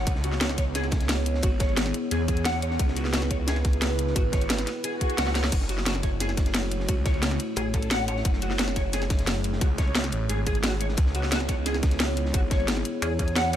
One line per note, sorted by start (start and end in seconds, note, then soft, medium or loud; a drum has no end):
0.07 1.42 C#2 loud
0.07 5.48 B3 medium
0.07 10.94 E4 medium
0.07 5.48 G#4 medium
0.07 2.77 C#5 medium
0.07 kick loud
0.07 closed hi-hat medium
0.07 ride medium
0.15 snare soft
0.24 0.38 F#4 medium
0.24 closed hi-hat medium
0.24 ride medium
0.32 snare soft
0.41 0.47 F#4 loud
0.41 snare loud
0.41 closed hi-hat medium
0.41 ride medium
0.49 snare soft
0.57 0.64 C#5 medium
0.57 kick medium
0.57 snare soft
0.57 closed hi-hat medium
0.57 ride medium
0.75 0.85 G#4 loud
0.75 snare soft
0.75 closed hi-hat medium
0.75 ride medium
0.84 snare soft
0.91 kick loud
0.91 snare soft
0.91 closed hi-hat medium
0.91 ride medium
1.01 snare soft
1.01 closed hi-hat soft
1.09 snare loud
1.09 closed hi-hat medium
1.09 ride medium
1.18 ride soft
1.26 closed hi-hat medium
1.26 ride medium
1.34 snare soft
1.42 1.93 G#1 loud
1.42 1.49 F#4 loud
1.42 kick loud
1.42 closed hi-hat medium
1.42 ride medium
1.59 1.74 C#5 medium
1.59 kick loud
1.59 snare soft
1.59 closed hi-hat medium
1.59 ride medium
1.69 ride soft
1.77 snare loud
1.77 closed hi-hat medium
1.77 ride medium
1.86 snare soft
1.94 closed hi-hat medium
1.94 ride medium
2.11 2.78 E2 loud
2.11 2.21 G#4 medium
2.11 closed hi-hat medium
2.11 ride medium
2.28 2.43 G#4 medium
2.28 kick medium
2.28 closed hi-hat medium
2.28 ride medium
2.37 closed hi-hat soft
2.45 2.60 F#5 loud
2.45 snare loud
2.45 closed hi-hat medium
2.45 ride medium
2.62 2.77 C#5 medium
2.62 closed hi-hat medium
2.62 ride medium
2.71 snare soft
2.79 4.15 C#2 loud
2.79 5.50 B4 medium
2.79 kick loud
2.79 closed hi-hat medium
2.79 ride medium
2.88 snare soft
2.97 3.11 F#4 medium
2.97 closed hi-hat medium
2.97 ride medium
3.05 snare soft
3.13 3.19 F#4 loud
3.13 snare loud
3.13 closed hi-hat medium
3.13 ride loud
3.22 snare soft
3.31 3.36 C#5 medium
3.31 kick medium
3.31 closed hi-hat medium
3.31 ride medium
3.47 3.57 G#4 loud
3.47 snare loud
3.47 snare soft
3.47 closed hi-hat medium
3.47 ride medium
3.56 snare soft
3.65 kick loud
3.65 snare soft
3.65 closed hi-hat medium
3.65 ride medium
3.73 closed hi-hat soft
3.82 snare loud
3.82 closed hi-hat medium
3.82 ride medium
3.91 ride soft
3.99 closed hi-hat medium
3.99 ride medium
4.07 snare soft
4.16 4.66 G#1 medium
4.16 4.22 F#4 loud
4.16 kick loud
4.16 closed hi-hat medium
4.16 ride medium
4.32 4.47 C#5 medium
4.32 kick loud
4.32 snare medium
4.32 closed hi-hat medium
4.32 ride medium
4.41 closed hi-hat soft
4.41 ride soft
4.50 snare loud
4.50 closed hi-hat loud
4.50 ride medium
4.58 snare soft
4.58 closed hi-hat soft
4.67 snare soft
4.67 closed hi-hat medium
4.84 4.94 G#4 medium
4.84 closed hi-hat medium
4.84 ride medium
4.84 swell medium
5.01 5.15 G#4 medium
5.01 kick medium
5.01 closed hi-hat medium
5.01 ride medium
5.10 closed hi-hat soft
5.18 5.51 C#2 loud
5.18 5.32 F#5 medium
5.18 snare loud
5.18 closed hi-hat medium
5.18 ride medium
5.27 snare medium
5.35 5.50 C#5 medium
5.35 snare medium
5.35 closed hi-hat medium
5.35 ride medium
5.44 snare medium
5.44 snare soft
5.52 6.87 F#1 loud
5.52 10.94 A3 medium
5.52 8.22 F#4 medium
5.52 10.94 C#5 medium
5.52 kick loud
5.52 closed hi-hat loud
5.52 crash medium
5.52 ride medium
5.61 snare soft
5.69 5.84 F#4 medium
5.69 closed hi-hat medium
5.69 ride medium
5.78 snare soft
5.86 5.92 F#4 loud
5.86 snare loud
5.86 closed hi-hat loud
5.86 ride medium
5.95 snare medium
6.03 6.09 C#5 medium
6.03 kick medium
6.03 snare soft
6.03 closed hi-hat medium
6.03 ride medium
6.20 6.30 G#4 loud
6.20 snare soft
6.20 closed hi-hat loud
6.20 ride medium
6.29 snare soft
6.37 kick loud
6.37 snare soft
6.37 closed hi-hat medium
6.37 ride medium
6.46 snare soft
6.46 closed hi-hat soft
6.55 snare loud
6.55 closed hi-hat medium
6.55 ride medium
6.63 ride soft
6.71 closed hi-hat medium
6.71 ride medium
6.80 snare soft
6.88 7.38 C#2 loud
6.88 6.94 F#4 loud
6.88 kick loud
6.88 closed hi-hat medium
6.88 ride medium
7.05 7.20 C#5 medium
7.05 kick loud
7.05 snare soft
7.05 closed hi-hat medium
7.05 ride medium
7.14 ride soft
7.22 snare loud
7.22 closed hi-hat medium
7.22 ride medium
7.31 snare medium
7.40 closed hi-hat medium
7.40 ride medium
7.56 8.24 A1 loud
7.56 7.66 G#4 medium
7.56 closed hi-hat medium
7.56 ride medium
7.74 7.88 A4 medium
7.74 kick medium
7.74 closed hi-hat medium
7.74 ride medium
7.82 closed hi-hat soft
7.91 8.05 F#5 medium
7.91 snare loud
7.91 closed hi-hat loud
7.91 ride medium
8.08 8.22 C#5 medium
8.08 closed hi-hat medium
8.08 ride medium
8.16 snare soft
8.25 9.60 F#1 loud
8.25 13.56 G#4 medium
8.25 kick loud
8.25 closed hi-hat medium
8.25 ride medium
8.33 snare soft
8.42 8.56 F#4 medium
8.42 closed hi-hat medium
8.42 ride medium
8.51 snare soft
8.58 8.65 F#4 loud
8.58 snare loud
8.58 closed hi-hat medium
8.58 ride medium
8.68 snare medium
8.76 8.82 C#5 medium
8.76 kick medium
8.76 snare soft
8.76 closed hi-hat medium
8.76 ride medium
8.93 9.03 G#4 loud
8.93 snare soft
8.93 closed hi-hat medium
8.93 ride loud
9.02 snare soft
9.10 kick loud
9.10 snare medium
9.10 closed hi-hat medium
9.10 ride medium
9.19 snare soft
9.19 closed hi-hat soft
9.27 snare loud
9.27 closed hi-hat medium
9.27 ride medium
9.36 ride soft
9.44 closed hi-hat medium
9.44 ride medium
9.53 snare soft
9.61 10.11 C#2 loud
9.61 9.67 F#4 loud
9.61 kick loud
9.61 closed hi-hat medium
9.61 ride medium
9.78 9.93 C#5 medium
9.78 kick loud
9.78 snare medium
9.78 closed hi-hat medium
9.78 ride medium
9.87 ride soft
9.95 snare loud
9.95 closed hi-hat medium
9.95 ride medium
10.04 snare medium
10.04 closed hi-hat soft
10.12 10.28 A1 loud
10.12 closed hi-hat medium
10.12 ride medium
10.29 10.96 G#1 loud
10.29 10.39 G#4 medium
10.29 closed hi-hat medium
10.29 ride medium
10.46 10.56 G#4 loud
10.46 kick medium
10.46 closed hi-hat medium
10.46 ride medium
10.55 closed hi-hat soft
10.63 10.73 F#4 medium
10.63 snare loud
10.63 closed hi-hat medium
10.63 ride medium
10.81 10.86 C#5 medium
10.81 closed hi-hat medium
10.81 ride medium
10.89 snare soft
10.97 12.33 C#2 loud
10.97 13.56 B3 medium
10.97 13.56 E4 medium
10.97 13.56 C#5 medium
10.97 kick loud
10.97 closed hi-hat medium
10.97 ride medium
11.06 snare soft
11.15 11.29 F#4 medium
11.15 closed hi-hat medium
11.15 ride medium
11.23 snare soft
11.32 11.37 F#4 loud
11.32 snare loud
11.32 closed hi-hat medium
11.32 ride medium
11.40 snare soft
11.48 11.55 C#5 medium
11.48 kick medium
11.48 snare soft
11.48 closed hi-hat medium
11.48 ride medium
11.66 11.75 G#4 loud
11.66 snare soft
11.66 closed hi-hat medium
11.66 ride medium
11.74 snare soft
11.83 kick loud
11.83 snare medium
11.83 closed hi-hat medium
11.83 ride medium
11.91 snare soft
11.91 closed hi-hat soft
12.00 snare loud
12.00 closed hi-hat medium
12.00 ride medium
12.08 ride soft
12.17 closed hi-hat medium
12.17 ride medium
12.26 snare soft
12.34 12.84 G#1 loud
12.34 12.40 F#4 loud
12.34 kick loud
12.34 closed hi-hat medium
12.34 ride medium
12.51 12.65 C#5 medium
12.51 kick loud
12.51 snare medium
12.51 closed hi-hat medium
12.51 ride medium
12.60 ride soft
12.68 snare loud
12.68 closed hi-hat medium
12.68 ride medium
12.77 snare soft
12.85 closed hi-hat medium
12.85 ride medium
13.02 13.56 E2 medium
13.02 13.12 G#4 medium
13.02 closed hi-hat medium
13.02 ride medium
13.19 13.34 G#4 medium
13.19 kick medium
13.19 closed hi-hat medium
13.19 ride medium
13.28 closed hi-hat soft
13.35 13.51 F#5 loud
13.35 snare loud
13.35 closed hi-hat medium
13.35 ride medium